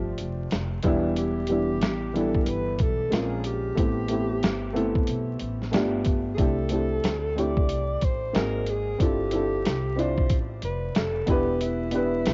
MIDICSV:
0, 0, Header, 1, 5, 480
1, 0, Start_track
1, 0, Tempo, 652174
1, 861, Time_signature, 4, 2, 24, 8
1, 9080, End_track
2, 0, Start_track
2, 0, Title_t, "Alto saxophone"
2, 0, Program_c, 0, 65
2, 0, Note_on_c, 0, 65, 91
2, 149, Note_off_c, 0, 65, 0
2, 870, Note_on_c, 0, 67, 103
2, 1593, Note_on_c, 0, 69, 86
2, 1604, Note_off_c, 0, 67, 0
2, 1788, Note_on_c, 0, 70, 76
2, 1799, Note_off_c, 0, 69, 0
2, 1831, Note_on_c, 0, 71, 102
2, 1842, Note_off_c, 0, 70, 0
2, 2026, Note_off_c, 0, 71, 0
2, 2026, Note_on_c, 0, 71, 71
2, 2071, Note_on_c, 0, 69, 99
2, 2082, Note_off_c, 0, 71, 0
2, 2307, Note_on_c, 0, 68, 94
2, 2318, Note_off_c, 0, 69, 0
2, 2546, Note_on_c, 0, 67, 96
2, 2558, Note_off_c, 0, 68, 0
2, 3984, Note_off_c, 0, 67, 0
2, 4668, Note_on_c, 0, 68, 77
2, 4722, Note_on_c, 0, 69, 109
2, 4733, Note_off_c, 0, 68, 0
2, 5436, Note_on_c, 0, 74, 107
2, 5447, Note_off_c, 0, 69, 0
2, 5918, Note_on_c, 0, 72, 96
2, 5929, Note_off_c, 0, 74, 0
2, 6149, Note_off_c, 0, 72, 0
2, 6162, Note_on_c, 0, 70, 104
2, 6402, Note_on_c, 0, 68, 93
2, 6413, Note_off_c, 0, 70, 0
2, 6639, Note_on_c, 0, 67, 96
2, 6650, Note_off_c, 0, 68, 0
2, 7356, Note_on_c, 0, 72, 93
2, 7367, Note_off_c, 0, 67, 0
2, 7638, Note_off_c, 0, 72, 0
2, 7835, Note_on_c, 0, 71, 91
2, 8079, Note_on_c, 0, 69, 94
2, 8090, Note_off_c, 0, 71, 0
2, 8310, Note_off_c, 0, 69, 0
2, 8316, Note_on_c, 0, 67, 87
2, 8547, Note_on_c, 0, 64, 97
2, 8558, Note_off_c, 0, 67, 0
2, 9080, Note_off_c, 0, 64, 0
2, 9080, End_track
3, 0, Start_track
3, 0, Title_t, "Upright piano"
3, 0, Program_c, 1, 0
3, 0, Note_on_c, 1, 53, 85
3, 0, Note_on_c, 1, 57, 72
3, 0, Note_on_c, 1, 60, 79
3, 0, Note_on_c, 1, 62, 79
3, 0, Note_on_c, 1, 67, 85
3, 489, Note_off_c, 1, 53, 0
3, 493, Note_off_c, 1, 57, 0
3, 496, Note_off_c, 1, 60, 0
3, 500, Note_off_c, 1, 62, 0
3, 503, Note_off_c, 1, 67, 0
3, 612, Note_on_c, 1, 52, 88
3, 621, Note_on_c, 1, 55, 82
3, 626, Note_on_c, 1, 59, 87
3, 633, Note_on_c, 1, 62, 88
3, 641, Note_on_c, 1, 64, 105
3, 1039, Note_off_c, 1, 52, 0
3, 1044, Note_off_c, 1, 55, 0
3, 1046, Note_off_c, 1, 59, 0
3, 1050, Note_off_c, 1, 62, 0
3, 1053, Note_off_c, 1, 64, 0
3, 1091, Note_on_c, 1, 52, 62
3, 1098, Note_on_c, 1, 55, 62
3, 1104, Note_on_c, 1, 59, 60
3, 1110, Note_on_c, 1, 62, 66
3, 1117, Note_on_c, 1, 64, 71
3, 1518, Note_off_c, 1, 52, 0
3, 1522, Note_off_c, 1, 55, 0
3, 1525, Note_off_c, 1, 59, 0
3, 1528, Note_off_c, 1, 62, 0
3, 1532, Note_off_c, 1, 64, 0
3, 1570, Note_on_c, 1, 52, 69
3, 1576, Note_on_c, 1, 55, 66
3, 1584, Note_on_c, 1, 59, 64
3, 1590, Note_on_c, 1, 62, 65
3, 1596, Note_on_c, 1, 64, 76
3, 2283, Note_on_c, 1, 56, 71
3, 2292, Note_on_c, 1, 58, 67
3, 2295, Note_off_c, 1, 52, 0
3, 2297, Note_on_c, 1, 60, 69
3, 2299, Note_off_c, 1, 55, 0
3, 2303, Note_off_c, 1, 59, 0
3, 2305, Note_on_c, 1, 61, 62
3, 2306, Note_off_c, 1, 62, 0
3, 2309, Note_off_c, 1, 64, 0
3, 2311, Note_on_c, 1, 65, 82
3, 2715, Note_off_c, 1, 56, 0
3, 2719, Note_off_c, 1, 58, 0
3, 2721, Note_off_c, 1, 60, 0
3, 2725, Note_off_c, 1, 61, 0
3, 2729, Note_off_c, 1, 65, 0
3, 2760, Note_on_c, 1, 57, 75
3, 2769, Note_on_c, 1, 59, 65
3, 2777, Note_on_c, 1, 60, 66
3, 2782, Note_on_c, 1, 64, 67
3, 2790, Note_on_c, 1, 67, 79
3, 2982, Note_off_c, 1, 57, 0
3, 2987, Note_off_c, 1, 59, 0
3, 2990, Note_off_c, 1, 60, 0
3, 2993, Note_off_c, 1, 64, 0
3, 2997, Note_off_c, 1, 67, 0
3, 3005, Note_on_c, 1, 57, 68
3, 3012, Note_on_c, 1, 59, 63
3, 3020, Note_on_c, 1, 60, 60
3, 3027, Note_on_c, 1, 64, 59
3, 3035, Note_on_c, 1, 67, 70
3, 3436, Note_off_c, 1, 57, 0
3, 3439, Note_off_c, 1, 59, 0
3, 3443, Note_off_c, 1, 60, 0
3, 3447, Note_off_c, 1, 64, 0
3, 3450, Note_off_c, 1, 67, 0
3, 3482, Note_on_c, 1, 57, 80
3, 3488, Note_on_c, 1, 59, 75
3, 3495, Note_on_c, 1, 60, 78
3, 3501, Note_on_c, 1, 64, 75
3, 3508, Note_on_c, 1, 69, 91
3, 4194, Note_off_c, 1, 57, 0
3, 4204, Note_off_c, 1, 59, 0
3, 4205, Note_on_c, 1, 57, 77
3, 4215, Note_on_c, 1, 59, 78
3, 4218, Note_off_c, 1, 60, 0
3, 4220, Note_on_c, 1, 62, 77
3, 4221, Note_off_c, 1, 64, 0
3, 4224, Note_off_c, 1, 69, 0
3, 4228, Note_on_c, 1, 65, 70
3, 4234, Note_on_c, 1, 67, 86
3, 4635, Note_off_c, 1, 57, 0
3, 4640, Note_off_c, 1, 59, 0
3, 4643, Note_off_c, 1, 62, 0
3, 4647, Note_off_c, 1, 65, 0
3, 4650, Note_off_c, 1, 67, 0
3, 4684, Note_on_c, 1, 57, 72
3, 4693, Note_on_c, 1, 60, 64
3, 4699, Note_on_c, 1, 62, 70
3, 4705, Note_on_c, 1, 64, 67
3, 4713, Note_on_c, 1, 67, 78
3, 4904, Note_off_c, 1, 57, 0
3, 4908, Note_off_c, 1, 60, 0
3, 4911, Note_off_c, 1, 62, 0
3, 4914, Note_off_c, 1, 64, 0
3, 4918, Note_off_c, 1, 67, 0
3, 4926, Note_on_c, 1, 57, 65
3, 4933, Note_on_c, 1, 60, 60
3, 4941, Note_on_c, 1, 62, 64
3, 4948, Note_on_c, 1, 64, 61
3, 4956, Note_on_c, 1, 67, 72
3, 5356, Note_off_c, 1, 57, 0
3, 5360, Note_off_c, 1, 60, 0
3, 5364, Note_off_c, 1, 62, 0
3, 5367, Note_off_c, 1, 64, 0
3, 5371, Note_off_c, 1, 67, 0
3, 5407, Note_on_c, 1, 57, 66
3, 5415, Note_on_c, 1, 60, 67
3, 5424, Note_on_c, 1, 62, 62
3, 5430, Note_on_c, 1, 64, 59
3, 5436, Note_on_c, 1, 67, 79
3, 6126, Note_off_c, 1, 60, 0
3, 6132, Note_on_c, 1, 58, 69
3, 6134, Note_off_c, 1, 57, 0
3, 6137, Note_on_c, 1, 60, 64
3, 6142, Note_off_c, 1, 62, 0
3, 6144, Note_on_c, 1, 63, 62
3, 6146, Note_off_c, 1, 64, 0
3, 6149, Note_off_c, 1, 67, 0
3, 6153, Note_on_c, 1, 66, 64
3, 6160, Note_on_c, 1, 68, 78
3, 6559, Note_off_c, 1, 58, 0
3, 6562, Note_off_c, 1, 60, 0
3, 6565, Note_off_c, 1, 63, 0
3, 6570, Note_off_c, 1, 66, 0
3, 6573, Note_off_c, 1, 68, 0
3, 6611, Note_on_c, 1, 60, 72
3, 6619, Note_on_c, 1, 62, 66
3, 6627, Note_on_c, 1, 64, 71
3, 6635, Note_on_c, 1, 65, 68
3, 6642, Note_on_c, 1, 69, 77
3, 6827, Note_off_c, 1, 60, 0
3, 6831, Note_off_c, 1, 62, 0
3, 6835, Note_off_c, 1, 64, 0
3, 6839, Note_off_c, 1, 65, 0
3, 6843, Note_off_c, 1, 69, 0
3, 6851, Note_on_c, 1, 60, 63
3, 6857, Note_on_c, 1, 62, 58
3, 6865, Note_on_c, 1, 64, 64
3, 6872, Note_on_c, 1, 65, 61
3, 6882, Note_on_c, 1, 69, 75
3, 7279, Note_off_c, 1, 60, 0
3, 7282, Note_off_c, 1, 62, 0
3, 7286, Note_off_c, 1, 64, 0
3, 7289, Note_off_c, 1, 65, 0
3, 7294, Note_off_c, 1, 69, 0
3, 7329, Note_on_c, 1, 60, 68
3, 7338, Note_on_c, 1, 62, 64
3, 7347, Note_on_c, 1, 64, 64
3, 7352, Note_on_c, 1, 65, 66
3, 7360, Note_on_c, 1, 74, 72
3, 8171, Note_off_c, 1, 60, 0
3, 8175, Note_off_c, 1, 62, 0
3, 8179, Note_off_c, 1, 64, 0
3, 8182, Note_off_c, 1, 65, 0
3, 8186, Note_off_c, 1, 74, 0
3, 8289, Note_on_c, 1, 59, 79
3, 8296, Note_on_c, 1, 62, 73
3, 8304, Note_on_c, 1, 64, 72
3, 8309, Note_on_c, 1, 67, 70
3, 8317, Note_on_c, 1, 71, 88
3, 8717, Note_off_c, 1, 59, 0
3, 8721, Note_off_c, 1, 62, 0
3, 8725, Note_off_c, 1, 64, 0
3, 8728, Note_off_c, 1, 67, 0
3, 8732, Note_off_c, 1, 71, 0
3, 8768, Note_on_c, 1, 59, 73
3, 8773, Note_on_c, 1, 62, 64
3, 8783, Note_on_c, 1, 64, 59
3, 8789, Note_on_c, 1, 67, 60
3, 8796, Note_on_c, 1, 71, 76
3, 9080, Note_off_c, 1, 59, 0
3, 9080, Note_off_c, 1, 62, 0
3, 9080, Note_off_c, 1, 64, 0
3, 9080, Note_off_c, 1, 67, 0
3, 9080, Note_off_c, 1, 71, 0
3, 9080, End_track
4, 0, Start_track
4, 0, Title_t, "Upright bass"
4, 0, Program_c, 2, 32
4, 0, Note_on_c, 2, 31, 89
4, 129, Note_off_c, 2, 31, 0
4, 144, Note_on_c, 2, 29, 85
4, 371, Note_off_c, 2, 29, 0
4, 382, Note_on_c, 2, 29, 96
4, 610, Note_off_c, 2, 29, 0
4, 619, Note_on_c, 2, 28, 91
4, 1340, Note_off_c, 2, 28, 0
4, 1340, Note_on_c, 2, 33, 85
4, 1797, Note_off_c, 2, 33, 0
4, 1819, Note_on_c, 2, 31, 86
4, 2048, Note_off_c, 2, 31, 0
4, 2060, Note_on_c, 2, 35, 90
4, 2289, Note_off_c, 2, 35, 0
4, 2298, Note_on_c, 2, 34, 102
4, 2755, Note_off_c, 2, 34, 0
4, 2780, Note_on_c, 2, 33, 83
4, 3236, Note_off_c, 2, 33, 0
4, 3260, Note_on_c, 2, 31, 91
4, 3717, Note_off_c, 2, 31, 0
4, 3741, Note_on_c, 2, 35, 84
4, 3969, Note_off_c, 2, 35, 0
4, 3983, Note_on_c, 2, 33, 80
4, 4210, Note_off_c, 2, 33, 0
4, 4224, Note_on_c, 2, 31, 90
4, 4678, Note_off_c, 2, 31, 0
4, 4700, Note_on_c, 2, 36, 93
4, 5156, Note_off_c, 2, 36, 0
4, 5182, Note_on_c, 2, 38, 100
4, 5663, Note_off_c, 2, 38, 0
4, 5663, Note_on_c, 2, 36, 85
4, 5890, Note_off_c, 2, 36, 0
4, 5904, Note_on_c, 2, 33, 77
4, 6131, Note_off_c, 2, 33, 0
4, 6145, Note_on_c, 2, 32, 101
4, 6599, Note_off_c, 2, 32, 0
4, 6625, Note_on_c, 2, 31, 89
4, 7079, Note_off_c, 2, 31, 0
4, 7108, Note_on_c, 2, 36, 90
4, 7561, Note_off_c, 2, 36, 0
4, 7583, Note_on_c, 2, 33, 80
4, 7810, Note_off_c, 2, 33, 0
4, 7822, Note_on_c, 2, 29, 81
4, 8050, Note_off_c, 2, 29, 0
4, 8063, Note_on_c, 2, 29, 92
4, 8290, Note_off_c, 2, 29, 0
4, 8302, Note_on_c, 2, 28, 91
4, 8992, Note_off_c, 2, 28, 0
4, 9019, Note_on_c, 2, 36, 97
4, 9080, Note_off_c, 2, 36, 0
4, 9080, End_track
5, 0, Start_track
5, 0, Title_t, "Drums"
5, 131, Note_on_c, 9, 42, 68
5, 205, Note_off_c, 9, 42, 0
5, 374, Note_on_c, 9, 42, 65
5, 384, Note_on_c, 9, 38, 98
5, 448, Note_off_c, 9, 42, 0
5, 458, Note_off_c, 9, 38, 0
5, 607, Note_on_c, 9, 42, 70
5, 619, Note_on_c, 9, 36, 101
5, 681, Note_off_c, 9, 42, 0
5, 692, Note_off_c, 9, 36, 0
5, 857, Note_on_c, 9, 42, 80
5, 930, Note_off_c, 9, 42, 0
5, 1082, Note_on_c, 9, 42, 76
5, 1155, Note_off_c, 9, 42, 0
5, 1335, Note_on_c, 9, 42, 90
5, 1344, Note_on_c, 9, 38, 110
5, 1409, Note_off_c, 9, 42, 0
5, 1418, Note_off_c, 9, 38, 0
5, 1587, Note_on_c, 9, 42, 50
5, 1661, Note_off_c, 9, 42, 0
5, 1726, Note_on_c, 9, 36, 85
5, 1800, Note_off_c, 9, 36, 0
5, 1812, Note_on_c, 9, 42, 99
5, 1886, Note_off_c, 9, 42, 0
5, 2051, Note_on_c, 9, 42, 71
5, 2060, Note_on_c, 9, 36, 83
5, 2125, Note_off_c, 9, 42, 0
5, 2133, Note_off_c, 9, 36, 0
5, 2297, Note_on_c, 9, 42, 71
5, 2307, Note_on_c, 9, 38, 97
5, 2371, Note_off_c, 9, 42, 0
5, 2380, Note_off_c, 9, 38, 0
5, 2532, Note_on_c, 9, 42, 75
5, 2606, Note_off_c, 9, 42, 0
5, 2778, Note_on_c, 9, 36, 104
5, 2779, Note_on_c, 9, 42, 82
5, 2851, Note_off_c, 9, 36, 0
5, 2853, Note_off_c, 9, 42, 0
5, 3005, Note_on_c, 9, 42, 80
5, 3079, Note_off_c, 9, 42, 0
5, 3259, Note_on_c, 9, 42, 90
5, 3268, Note_on_c, 9, 38, 110
5, 3333, Note_off_c, 9, 42, 0
5, 3342, Note_off_c, 9, 38, 0
5, 3506, Note_on_c, 9, 42, 54
5, 3580, Note_off_c, 9, 42, 0
5, 3646, Note_on_c, 9, 36, 91
5, 3719, Note_off_c, 9, 36, 0
5, 3733, Note_on_c, 9, 42, 100
5, 3806, Note_off_c, 9, 42, 0
5, 3970, Note_on_c, 9, 42, 67
5, 4044, Note_off_c, 9, 42, 0
5, 4134, Note_on_c, 9, 38, 34
5, 4208, Note_off_c, 9, 38, 0
5, 4216, Note_on_c, 9, 42, 71
5, 4226, Note_on_c, 9, 38, 102
5, 4290, Note_off_c, 9, 42, 0
5, 4299, Note_off_c, 9, 38, 0
5, 4449, Note_on_c, 9, 42, 72
5, 4459, Note_on_c, 9, 36, 97
5, 4522, Note_off_c, 9, 42, 0
5, 4533, Note_off_c, 9, 36, 0
5, 4697, Note_on_c, 9, 42, 77
5, 4698, Note_on_c, 9, 36, 103
5, 4771, Note_off_c, 9, 42, 0
5, 4772, Note_off_c, 9, 36, 0
5, 4925, Note_on_c, 9, 42, 77
5, 4999, Note_off_c, 9, 42, 0
5, 5180, Note_on_c, 9, 42, 100
5, 5189, Note_on_c, 9, 38, 107
5, 5253, Note_off_c, 9, 42, 0
5, 5262, Note_off_c, 9, 38, 0
5, 5431, Note_on_c, 9, 42, 56
5, 5505, Note_off_c, 9, 42, 0
5, 5570, Note_on_c, 9, 36, 92
5, 5644, Note_off_c, 9, 36, 0
5, 5659, Note_on_c, 9, 42, 95
5, 5732, Note_off_c, 9, 42, 0
5, 5898, Note_on_c, 9, 42, 63
5, 5904, Note_on_c, 9, 36, 88
5, 5971, Note_off_c, 9, 42, 0
5, 5977, Note_off_c, 9, 36, 0
5, 6143, Note_on_c, 9, 42, 67
5, 6153, Note_on_c, 9, 38, 98
5, 6217, Note_off_c, 9, 42, 0
5, 6227, Note_off_c, 9, 38, 0
5, 6377, Note_on_c, 9, 42, 68
5, 6451, Note_off_c, 9, 42, 0
5, 6623, Note_on_c, 9, 36, 109
5, 6625, Note_on_c, 9, 42, 81
5, 6697, Note_off_c, 9, 36, 0
5, 6698, Note_off_c, 9, 42, 0
5, 6852, Note_on_c, 9, 42, 81
5, 6926, Note_off_c, 9, 42, 0
5, 7104, Note_on_c, 9, 42, 92
5, 7113, Note_on_c, 9, 38, 118
5, 7178, Note_off_c, 9, 42, 0
5, 7187, Note_off_c, 9, 38, 0
5, 7352, Note_on_c, 9, 42, 52
5, 7425, Note_off_c, 9, 42, 0
5, 7490, Note_on_c, 9, 36, 88
5, 7564, Note_off_c, 9, 36, 0
5, 7578, Note_on_c, 9, 42, 97
5, 7581, Note_on_c, 9, 36, 84
5, 7652, Note_off_c, 9, 42, 0
5, 7655, Note_off_c, 9, 36, 0
5, 7817, Note_on_c, 9, 42, 68
5, 7891, Note_off_c, 9, 42, 0
5, 8059, Note_on_c, 9, 42, 65
5, 8068, Note_on_c, 9, 38, 94
5, 8132, Note_off_c, 9, 42, 0
5, 8142, Note_off_c, 9, 38, 0
5, 8294, Note_on_c, 9, 42, 71
5, 8302, Note_on_c, 9, 36, 103
5, 8368, Note_off_c, 9, 42, 0
5, 8375, Note_off_c, 9, 36, 0
5, 8543, Note_on_c, 9, 42, 82
5, 8617, Note_off_c, 9, 42, 0
5, 8768, Note_on_c, 9, 42, 82
5, 8842, Note_off_c, 9, 42, 0
5, 9021, Note_on_c, 9, 42, 89
5, 9030, Note_on_c, 9, 38, 107
5, 9080, Note_off_c, 9, 38, 0
5, 9080, Note_off_c, 9, 42, 0
5, 9080, End_track
0, 0, End_of_file